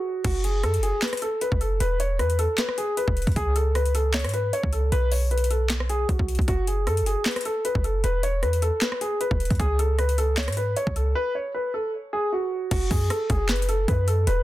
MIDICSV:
0, 0, Header, 1, 4, 480
1, 0, Start_track
1, 0, Key_signature, 3, "minor"
1, 0, Tempo, 389610
1, 302, Time_signature, 4, 2, 24, 8
1, 17778, End_track
2, 0, Start_track
2, 0, Title_t, "Grand piano"
2, 0, Program_c, 0, 0
2, 0, Note_on_c, 0, 66, 71
2, 274, Note_off_c, 0, 66, 0
2, 302, Note_on_c, 0, 66, 105
2, 505, Note_off_c, 0, 66, 0
2, 544, Note_on_c, 0, 68, 87
2, 746, Note_off_c, 0, 68, 0
2, 783, Note_on_c, 0, 69, 92
2, 986, Note_off_c, 0, 69, 0
2, 1023, Note_on_c, 0, 68, 84
2, 1225, Note_off_c, 0, 68, 0
2, 1264, Note_on_c, 0, 71, 75
2, 1466, Note_off_c, 0, 71, 0
2, 1503, Note_on_c, 0, 69, 82
2, 1706, Note_off_c, 0, 69, 0
2, 1742, Note_on_c, 0, 71, 82
2, 1945, Note_off_c, 0, 71, 0
2, 1982, Note_on_c, 0, 69, 79
2, 2185, Note_off_c, 0, 69, 0
2, 2222, Note_on_c, 0, 71, 93
2, 2425, Note_off_c, 0, 71, 0
2, 2462, Note_on_c, 0, 73, 83
2, 2665, Note_off_c, 0, 73, 0
2, 2702, Note_on_c, 0, 71, 83
2, 2905, Note_off_c, 0, 71, 0
2, 2943, Note_on_c, 0, 69, 81
2, 3146, Note_off_c, 0, 69, 0
2, 3182, Note_on_c, 0, 71, 84
2, 3385, Note_off_c, 0, 71, 0
2, 3423, Note_on_c, 0, 68, 84
2, 3626, Note_off_c, 0, 68, 0
2, 3662, Note_on_c, 0, 71, 83
2, 4113, Note_off_c, 0, 71, 0
2, 4141, Note_on_c, 0, 68, 100
2, 4345, Note_off_c, 0, 68, 0
2, 4382, Note_on_c, 0, 69, 86
2, 4585, Note_off_c, 0, 69, 0
2, 4621, Note_on_c, 0, 71, 89
2, 4825, Note_off_c, 0, 71, 0
2, 4863, Note_on_c, 0, 69, 81
2, 5066, Note_off_c, 0, 69, 0
2, 5104, Note_on_c, 0, 73, 86
2, 5306, Note_off_c, 0, 73, 0
2, 5341, Note_on_c, 0, 71, 83
2, 5545, Note_off_c, 0, 71, 0
2, 5582, Note_on_c, 0, 73, 84
2, 5785, Note_off_c, 0, 73, 0
2, 5823, Note_on_c, 0, 69, 77
2, 6026, Note_off_c, 0, 69, 0
2, 6062, Note_on_c, 0, 71, 109
2, 6265, Note_off_c, 0, 71, 0
2, 6303, Note_on_c, 0, 73, 75
2, 6506, Note_off_c, 0, 73, 0
2, 6542, Note_on_c, 0, 71, 81
2, 6745, Note_off_c, 0, 71, 0
2, 6782, Note_on_c, 0, 69, 71
2, 6985, Note_off_c, 0, 69, 0
2, 7263, Note_on_c, 0, 68, 90
2, 7466, Note_off_c, 0, 68, 0
2, 7503, Note_on_c, 0, 66, 71
2, 7954, Note_off_c, 0, 66, 0
2, 7982, Note_on_c, 0, 66, 108
2, 8185, Note_off_c, 0, 66, 0
2, 8224, Note_on_c, 0, 68, 85
2, 8426, Note_off_c, 0, 68, 0
2, 8463, Note_on_c, 0, 69, 91
2, 8666, Note_off_c, 0, 69, 0
2, 8703, Note_on_c, 0, 68, 84
2, 8906, Note_off_c, 0, 68, 0
2, 8944, Note_on_c, 0, 71, 74
2, 9146, Note_off_c, 0, 71, 0
2, 9184, Note_on_c, 0, 69, 83
2, 9386, Note_off_c, 0, 69, 0
2, 9422, Note_on_c, 0, 71, 82
2, 9625, Note_off_c, 0, 71, 0
2, 9662, Note_on_c, 0, 69, 78
2, 9865, Note_off_c, 0, 69, 0
2, 9902, Note_on_c, 0, 71, 92
2, 10105, Note_off_c, 0, 71, 0
2, 10142, Note_on_c, 0, 73, 85
2, 10345, Note_off_c, 0, 73, 0
2, 10382, Note_on_c, 0, 71, 81
2, 10585, Note_off_c, 0, 71, 0
2, 10623, Note_on_c, 0, 69, 80
2, 10826, Note_off_c, 0, 69, 0
2, 10863, Note_on_c, 0, 71, 82
2, 11066, Note_off_c, 0, 71, 0
2, 11102, Note_on_c, 0, 68, 81
2, 11305, Note_off_c, 0, 68, 0
2, 11342, Note_on_c, 0, 71, 83
2, 11793, Note_off_c, 0, 71, 0
2, 11820, Note_on_c, 0, 68, 102
2, 12024, Note_off_c, 0, 68, 0
2, 12062, Note_on_c, 0, 69, 85
2, 12265, Note_off_c, 0, 69, 0
2, 12300, Note_on_c, 0, 71, 86
2, 12504, Note_off_c, 0, 71, 0
2, 12543, Note_on_c, 0, 69, 82
2, 12745, Note_off_c, 0, 69, 0
2, 12784, Note_on_c, 0, 73, 82
2, 12986, Note_off_c, 0, 73, 0
2, 13021, Note_on_c, 0, 71, 83
2, 13225, Note_off_c, 0, 71, 0
2, 13262, Note_on_c, 0, 73, 81
2, 13465, Note_off_c, 0, 73, 0
2, 13503, Note_on_c, 0, 69, 78
2, 13706, Note_off_c, 0, 69, 0
2, 13742, Note_on_c, 0, 71, 111
2, 13945, Note_off_c, 0, 71, 0
2, 13983, Note_on_c, 0, 73, 74
2, 14186, Note_off_c, 0, 73, 0
2, 14223, Note_on_c, 0, 71, 81
2, 14425, Note_off_c, 0, 71, 0
2, 14462, Note_on_c, 0, 69, 72
2, 14665, Note_off_c, 0, 69, 0
2, 14943, Note_on_c, 0, 68, 90
2, 15146, Note_off_c, 0, 68, 0
2, 15183, Note_on_c, 0, 66, 72
2, 15634, Note_off_c, 0, 66, 0
2, 15662, Note_on_c, 0, 66, 109
2, 15865, Note_off_c, 0, 66, 0
2, 15904, Note_on_c, 0, 68, 86
2, 16106, Note_off_c, 0, 68, 0
2, 16143, Note_on_c, 0, 69, 92
2, 16346, Note_off_c, 0, 69, 0
2, 16383, Note_on_c, 0, 68, 88
2, 16586, Note_off_c, 0, 68, 0
2, 16624, Note_on_c, 0, 71, 76
2, 16826, Note_off_c, 0, 71, 0
2, 16863, Note_on_c, 0, 69, 83
2, 17066, Note_off_c, 0, 69, 0
2, 17102, Note_on_c, 0, 71, 87
2, 17305, Note_off_c, 0, 71, 0
2, 17342, Note_on_c, 0, 69, 81
2, 17545, Note_off_c, 0, 69, 0
2, 17582, Note_on_c, 0, 71, 94
2, 17778, Note_off_c, 0, 71, 0
2, 17778, End_track
3, 0, Start_track
3, 0, Title_t, "808-style bass"
3, 0, Program_c, 1, 38
3, 302, Note_on_c, 1, 30, 100
3, 782, Note_on_c, 1, 42, 101
3, 800, Note_off_c, 1, 30, 0
3, 966, Note_on_c, 1, 30, 97
3, 984, Note_off_c, 1, 42, 0
3, 1140, Note_off_c, 1, 30, 0
3, 1869, Note_on_c, 1, 30, 99
3, 2208, Note_off_c, 1, 30, 0
3, 2222, Note_on_c, 1, 28, 101
3, 2702, Note_on_c, 1, 40, 100
3, 2721, Note_off_c, 1, 28, 0
3, 3051, Note_off_c, 1, 40, 0
3, 3790, Note_on_c, 1, 28, 106
3, 4020, Note_off_c, 1, 28, 0
3, 4029, Note_on_c, 1, 40, 99
3, 4135, Note_off_c, 1, 40, 0
3, 4142, Note_on_c, 1, 37, 106
3, 5229, Note_on_c, 1, 44, 99
3, 5248, Note_off_c, 1, 37, 0
3, 5565, Note_off_c, 1, 44, 0
3, 5710, Note_on_c, 1, 37, 106
3, 6048, Note_off_c, 1, 37, 0
3, 6062, Note_on_c, 1, 35, 107
3, 7453, Note_off_c, 1, 35, 0
3, 7502, Note_on_c, 1, 35, 101
3, 7624, Note_off_c, 1, 35, 0
3, 7630, Note_on_c, 1, 35, 101
3, 7860, Note_off_c, 1, 35, 0
3, 7870, Note_on_c, 1, 35, 97
3, 7975, Note_off_c, 1, 35, 0
3, 7982, Note_on_c, 1, 30, 101
3, 8462, Note_on_c, 1, 42, 97
3, 8481, Note_off_c, 1, 30, 0
3, 8646, Note_on_c, 1, 30, 99
3, 8664, Note_off_c, 1, 42, 0
3, 8820, Note_off_c, 1, 30, 0
3, 9550, Note_on_c, 1, 30, 103
3, 9888, Note_off_c, 1, 30, 0
3, 9902, Note_on_c, 1, 28, 98
3, 10383, Note_on_c, 1, 40, 100
3, 10401, Note_off_c, 1, 28, 0
3, 10731, Note_off_c, 1, 40, 0
3, 11470, Note_on_c, 1, 28, 103
3, 11700, Note_off_c, 1, 28, 0
3, 11710, Note_on_c, 1, 40, 98
3, 11815, Note_off_c, 1, 40, 0
3, 11822, Note_on_c, 1, 37, 103
3, 12910, Note_on_c, 1, 44, 101
3, 12928, Note_off_c, 1, 37, 0
3, 13245, Note_off_c, 1, 44, 0
3, 13390, Note_on_c, 1, 37, 105
3, 13728, Note_off_c, 1, 37, 0
3, 15662, Note_on_c, 1, 30, 113
3, 15893, Note_off_c, 1, 30, 0
3, 15902, Note_on_c, 1, 42, 103
3, 16132, Note_off_c, 1, 42, 0
3, 16383, Note_on_c, 1, 30, 109
3, 17074, Note_off_c, 1, 30, 0
3, 17102, Note_on_c, 1, 42, 111
3, 17563, Note_off_c, 1, 42, 0
3, 17582, Note_on_c, 1, 28, 102
3, 17778, Note_off_c, 1, 28, 0
3, 17778, End_track
4, 0, Start_track
4, 0, Title_t, "Drums"
4, 302, Note_on_c, 9, 36, 122
4, 302, Note_on_c, 9, 42, 86
4, 302, Note_on_c, 9, 49, 96
4, 425, Note_off_c, 9, 36, 0
4, 425, Note_off_c, 9, 42, 0
4, 425, Note_off_c, 9, 49, 0
4, 542, Note_on_c, 9, 42, 83
4, 665, Note_off_c, 9, 42, 0
4, 782, Note_on_c, 9, 37, 66
4, 782, Note_on_c, 9, 42, 56
4, 905, Note_off_c, 9, 42, 0
4, 906, Note_off_c, 9, 37, 0
4, 909, Note_on_c, 9, 42, 59
4, 1022, Note_off_c, 9, 42, 0
4, 1022, Note_on_c, 9, 42, 70
4, 1145, Note_off_c, 9, 42, 0
4, 1262, Note_on_c, 9, 38, 127
4, 1262, Note_on_c, 9, 39, 104
4, 1262, Note_on_c, 9, 42, 50
4, 1326, Note_off_c, 9, 42, 0
4, 1326, Note_on_c, 9, 42, 60
4, 1385, Note_off_c, 9, 39, 0
4, 1386, Note_off_c, 9, 38, 0
4, 1389, Note_off_c, 9, 42, 0
4, 1389, Note_on_c, 9, 37, 105
4, 1389, Note_on_c, 9, 42, 71
4, 1446, Note_off_c, 9, 42, 0
4, 1446, Note_on_c, 9, 42, 85
4, 1502, Note_off_c, 9, 42, 0
4, 1502, Note_on_c, 9, 42, 68
4, 1512, Note_off_c, 9, 37, 0
4, 1625, Note_off_c, 9, 42, 0
4, 1742, Note_on_c, 9, 42, 71
4, 1865, Note_off_c, 9, 42, 0
4, 1869, Note_on_c, 9, 36, 103
4, 1982, Note_on_c, 9, 42, 71
4, 1993, Note_off_c, 9, 36, 0
4, 2105, Note_off_c, 9, 42, 0
4, 2222, Note_on_c, 9, 42, 86
4, 2345, Note_off_c, 9, 42, 0
4, 2462, Note_on_c, 9, 42, 85
4, 2585, Note_off_c, 9, 42, 0
4, 2702, Note_on_c, 9, 42, 59
4, 2703, Note_on_c, 9, 37, 67
4, 2826, Note_off_c, 9, 37, 0
4, 2826, Note_off_c, 9, 42, 0
4, 2829, Note_on_c, 9, 42, 56
4, 2942, Note_off_c, 9, 42, 0
4, 2942, Note_on_c, 9, 42, 69
4, 3065, Note_off_c, 9, 42, 0
4, 3181, Note_on_c, 9, 39, 105
4, 3182, Note_on_c, 9, 38, 124
4, 3182, Note_on_c, 9, 42, 87
4, 3305, Note_off_c, 9, 38, 0
4, 3305, Note_off_c, 9, 39, 0
4, 3305, Note_off_c, 9, 42, 0
4, 3309, Note_on_c, 9, 37, 105
4, 3422, Note_on_c, 9, 42, 74
4, 3432, Note_off_c, 9, 37, 0
4, 3545, Note_off_c, 9, 42, 0
4, 3662, Note_on_c, 9, 42, 70
4, 3785, Note_off_c, 9, 42, 0
4, 3790, Note_on_c, 9, 36, 100
4, 3902, Note_on_c, 9, 42, 69
4, 3913, Note_off_c, 9, 36, 0
4, 3965, Note_off_c, 9, 42, 0
4, 3965, Note_on_c, 9, 42, 58
4, 4029, Note_off_c, 9, 42, 0
4, 4029, Note_on_c, 9, 36, 90
4, 4029, Note_on_c, 9, 42, 50
4, 4085, Note_off_c, 9, 42, 0
4, 4085, Note_on_c, 9, 42, 39
4, 4142, Note_off_c, 9, 36, 0
4, 4142, Note_off_c, 9, 42, 0
4, 4142, Note_on_c, 9, 36, 121
4, 4142, Note_on_c, 9, 42, 84
4, 4265, Note_off_c, 9, 36, 0
4, 4265, Note_off_c, 9, 42, 0
4, 4382, Note_on_c, 9, 42, 89
4, 4506, Note_off_c, 9, 42, 0
4, 4622, Note_on_c, 9, 42, 58
4, 4623, Note_on_c, 9, 37, 68
4, 4746, Note_off_c, 9, 37, 0
4, 4746, Note_off_c, 9, 42, 0
4, 4749, Note_on_c, 9, 42, 57
4, 4862, Note_off_c, 9, 42, 0
4, 4862, Note_on_c, 9, 42, 71
4, 4985, Note_off_c, 9, 42, 0
4, 5102, Note_on_c, 9, 38, 127
4, 5102, Note_on_c, 9, 39, 105
4, 5102, Note_on_c, 9, 42, 49
4, 5166, Note_off_c, 9, 42, 0
4, 5166, Note_on_c, 9, 42, 61
4, 5225, Note_off_c, 9, 39, 0
4, 5226, Note_off_c, 9, 38, 0
4, 5229, Note_off_c, 9, 42, 0
4, 5229, Note_on_c, 9, 37, 103
4, 5229, Note_on_c, 9, 42, 72
4, 5286, Note_off_c, 9, 42, 0
4, 5286, Note_on_c, 9, 42, 83
4, 5342, Note_off_c, 9, 42, 0
4, 5342, Note_on_c, 9, 42, 69
4, 5352, Note_off_c, 9, 37, 0
4, 5465, Note_off_c, 9, 42, 0
4, 5582, Note_on_c, 9, 42, 69
4, 5706, Note_off_c, 9, 42, 0
4, 5710, Note_on_c, 9, 36, 100
4, 5822, Note_on_c, 9, 42, 73
4, 5833, Note_off_c, 9, 36, 0
4, 5945, Note_off_c, 9, 42, 0
4, 6062, Note_on_c, 9, 42, 88
4, 6186, Note_off_c, 9, 42, 0
4, 6302, Note_on_c, 9, 46, 87
4, 6426, Note_off_c, 9, 46, 0
4, 6543, Note_on_c, 9, 42, 42
4, 6622, Note_off_c, 9, 42, 0
4, 6622, Note_on_c, 9, 42, 56
4, 6702, Note_off_c, 9, 42, 0
4, 6702, Note_on_c, 9, 42, 69
4, 6782, Note_off_c, 9, 42, 0
4, 6782, Note_on_c, 9, 42, 68
4, 6906, Note_off_c, 9, 42, 0
4, 7022, Note_on_c, 9, 39, 102
4, 7022, Note_on_c, 9, 42, 88
4, 7023, Note_on_c, 9, 38, 125
4, 7145, Note_off_c, 9, 39, 0
4, 7145, Note_off_c, 9, 42, 0
4, 7146, Note_off_c, 9, 38, 0
4, 7149, Note_on_c, 9, 37, 105
4, 7262, Note_on_c, 9, 42, 74
4, 7272, Note_off_c, 9, 37, 0
4, 7386, Note_off_c, 9, 42, 0
4, 7502, Note_on_c, 9, 36, 88
4, 7502, Note_on_c, 9, 42, 70
4, 7625, Note_off_c, 9, 36, 0
4, 7626, Note_off_c, 9, 42, 0
4, 7630, Note_on_c, 9, 36, 101
4, 7743, Note_on_c, 9, 42, 66
4, 7753, Note_off_c, 9, 36, 0
4, 7822, Note_off_c, 9, 42, 0
4, 7822, Note_on_c, 9, 42, 53
4, 7870, Note_on_c, 9, 36, 91
4, 7902, Note_off_c, 9, 42, 0
4, 7902, Note_on_c, 9, 42, 41
4, 7982, Note_off_c, 9, 36, 0
4, 7982, Note_off_c, 9, 42, 0
4, 7982, Note_on_c, 9, 36, 124
4, 7982, Note_on_c, 9, 42, 87
4, 8105, Note_off_c, 9, 42, 0
4, 8106, Note_off_c, 9, 36, 0
4, 8222, Note_on_c, 9, 42, 87
4, 8346, Note_off_c, 9, 42, 0
4, 8462, Note_on_c, 9, 42, 57
4, 8463, Note_on_c, 9, 37, 65
4, 8586, Note_off_c, 9, 37, 0
4, 8586, Note_off_c, 9, 42, 0
4, 8590, Note_on_c, 9, 42, 60
4, 8702, Note_off_c, 9, 42, 0
4, 8702, Note_on_c, 9, 42, 71
4, 8825, Note_off_c, 9, 42, 0
4, 8942, Note_on_c, 9, 39, 103
4, 8942, Note_on_c, 9, 42, 51
4, 8943, Note_on_c, 9, 38, 127
4, 9006, Note_off_c, 9, 42, 0
4, 9006, Note_on_c, 9, 42, 63
4, 9065, Note_off_c, 9, 39, 0
4, 9066, Note_off_c, 9, 38, 0
4, 9069, Note_on_c, 9, 37, 102
4, 9070, Note_off_c, 9, 42, 0
4, 9070, Note_on_c, 9, 42, 71
4, 9126, Note_off_c, 9, 42, 0
4, 9126, Note_on_c, 9, 42, 85
4, 9183, Note_off_c, 9, 42, 0
4, 9183, Note_on_c, 9, 42, 67
4, 9192, Note_off_c, 9, 37, 0
4, 9306, Note_off_c, 9, 42, 0
4, 9422, Note_on_c, 9, 42, 70
4, 9546, Note_off_c, 9, 42, 0
4, 9550, Note_on_c, 9, 36, 103
4, 9662, Note_on_c, 9, 42, 72
4, 9673, Note_off_c, 9, 36, 0
4, 9785, Note_off_c, 9, 42, 0
4, 9902, Note_on_c, 9, 42, 88
4, 10026, Note_off_c, 9, 42, 0
4, 10142, Note_on_c, 9, 42, 84
4, 10266, Note_off_c, 9, 42, 0
4, 10382, Note_on_c, 9, 42, 57
4, 10383, Note_on_c, 9, 37, 68
4, 10506, Note_off_c, 9, 37, 0
4, 10506, Note_off_c, 9, 42, 0
4, 10510, Note_on_c, 9, 42, 57
4, 10622, Note_off_c, 9, 42, 0
4, 10622, Note_on_c, 9, 42, 70
4, 10746, Note_off_c, 9, 42, 0
4, 10862, Note_on_c, 9, 39, 103
4, 10862, Note_on_c, 9, 42, 87
4, 10863, Note_on_c, 9, 38, 124
4, 10985, Note_off_c, 9, 39, 0
4, 10985, Note_off_c, 9, 42, 0
4, 10986, Note_off_c, 9, 38, 0
4, 10989, Note_on_c, 9, 37, 106
4, 11102, Note_on_c, 9, 42, 75
4, 11112, Note_off_c, 9, 37, 0
4, 11226, Note_off_c, 9, 42, 0
4, 11342, Note_on_c, 9, 42, 70
4, 11465, Note_off_c, 9, 42, 0
4, 11470, Note_on_c, 9, 36, 102
4, 11582, Note_on_c, 9, 42, 68
4, 11593, Note_off_c, 9, 36, 0
4, 11646, Note_off_c, 9, 42, 0
4, 11646, Note_on_c, 9, 42, 59
4, 11710, Note_off_c, 9, 42, 0
4, 11710, Note_on_c, 9, 36, 90
4, 11710, Note_on_c, 9, 42, 50
4, 11766, Note_off_c, 9, 42, 0
4, 11766, Note_on_c, 9, 42, 41
4, 11822, Note_off_c, 9, 36, 0
4, 11822, Note_off_c, 9, 42, 0
4, 11822, Note_on_c, 9, 36, 124
4, 11822, Note_on_c, 9, 42, 84
4, 11946, Note_off_c, 9, 36, 0
4, 11946, Note_off_c, 9, 42, 0
4, 12062, Note_on_c, 9, 42, 84
4, 12186, Note_off_c, 9, 42, 0
4, 12302, Note_on_c, 9, 42, 58
4, 12303, Note_on_c, 9, 37, 67
4, 12425, Note_off_c, 9, 42, 0
4, 12426, Note_off_c, 9, 37, 0
4, 12429, Note_on_c, 9, 42, 56
4, 12542, Note_off_c, 9, 42, 0
4, 12542, Note_on_c, 9, 42, 69
4, 12665, Note_off_c, 9, 42, 0
4, 12782, Note_on_c, 9, 39, 105
4, 12783, Note_on_c, 9, 38, 124
4, 12783, Note_on_c, 9, 42, 51
4, 12846, Note_off_c, 9, 42, 0
4, 12846, Note_on_c, 9, 42, 60
4, 12905, Note_off_c, 9, 39, 0
4, 12906, Note_off_c, 9, 38, 0
4, 12909, Note_on_c, 9, 37, 104
4, 12910, Note_off_c, 9, 42, 0
4, 12910, Note_on_c, 9, 42, 71
4, 12966, Note_off_c, 9, 42, 0
4, 12966, Note_on_c, 9, 42, 86
4, 13023, Note_off_c, 9, 42, 0
4, 13023, Note_on_c, 9, 42, 67
4, 13032, Note_off_c, 9, 37, 0
4, 13146, Note_off_c, 9, 42, 0
4, 13262, Note_on_c, 9, 42, 70
4, 13386, Note_off_c, 9, 42, 0
4, 13390, Note_on_c, 9, 36, 104
4, 13502, Note_on_c, 9, 42, 73
4, 13513, Note_off_c, 9, 36, 0
4, 13625, Note_off_c, 9, 42, 0
4, 15662, Note_on_c, 9, 36, 123
4, 15662, Note_on_c, 9, 42, 88
4, 15662, Note_on_c, 9, 49, 108
4, 15785, Note_off_c, 9, 36, 0
4, 15785, Note_off_c, 9, 42, 0
4, 15785, Note_off_c, 9, 49, 0
4, 15902, Note_on_c, 9, 36, 103
4, 15902, Note_on_c, 9, 46, 87
4, 16025, Note_off_c, 9, 36, 0
4, 16025, Note_off_c, 9, 46, 0
4, 16142, Note_on_c, 9, 42, 70
4, 16143, Note_on_c, 9, 37, 69
4, 16266, Note_off_c, 9, 37, 0
4, 16266, Note_off_c, 9, 42, 0
4, 16382, Note_on_c, 9, 42, 72
4, 16383, Note_on_c, 9, 36, 97
4, 16505, Note_off_c, 9, 42, 0
4, 16506, Note_off_c, 9, 36, 0
4, 16622, Note_on_c, 9, 39, 104
4, 16622, Note_on_c, 9, 42, 53
4, 16623, Note_on_c, 9, 38, 125
4, 16702, Note_off_c, 9, 42, 0
4, 16702, Note_on_c, 9, 42, 68
4, 16745, Note_off_c, 9, 39, 0
4, 16746, Note_off_c, 9, 38, 0
4, 16782, Note_off_c, 9, 42, 0
4, 16782, Note_on_c, 9, 42, 88
4, 16862, Note_off_c, 9, 42, 0
4, 16862, Note_on_c, 9, 42, 72
4, 16985, Note_off_c, 9, 42, 0
4, 17102, Note_on_c, 9, 36, 90
4, 17102, Note_on_c, 9, 42, 73
4, 17225, Note_off_c, 9, 36, 0
4, 17225, Note_off_c, 9, 42, 0
4, 17342, Note_on_c, 9, 42, 75
4, 17466, Note_off_c, 9, 42, 0
4, 17582, Note_on_c, 9, 42, 88
4, 17706, Note_off_c, 9, 42, 0
4, 17778, End_track
0, 0, End_of_file